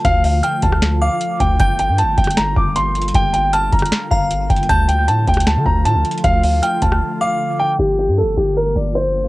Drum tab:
HH |x-----o-----x-----x-----x-----------x-----x-----|x-----x-----x-----x-x-x-x-----------x-----x-x-x-|x-----x-----x-----x-x-x-x-----------x-----x-x-x-|x-----x-----x-----x-x-x-x-----------x-----x-x-x-|
SD |---------------------r--o-----------------------|---------------------r--o-----------------------|---------------------r--o-----------------------|---------------------r--o-----------------------|
BD |o-----------------o-----------------------o-----|o-----------------o-----------o-----------------|o-----------------o-----------o-----------o-----|o-----------------o-----------o-----------------|

HH |x-----o-----x-----x-----------------------------|------------------------------------------------|
SD |---------------------r--------------------------|------------------------------------------------|
BD |o-----------------o-----------------------------|------------------------------------------------|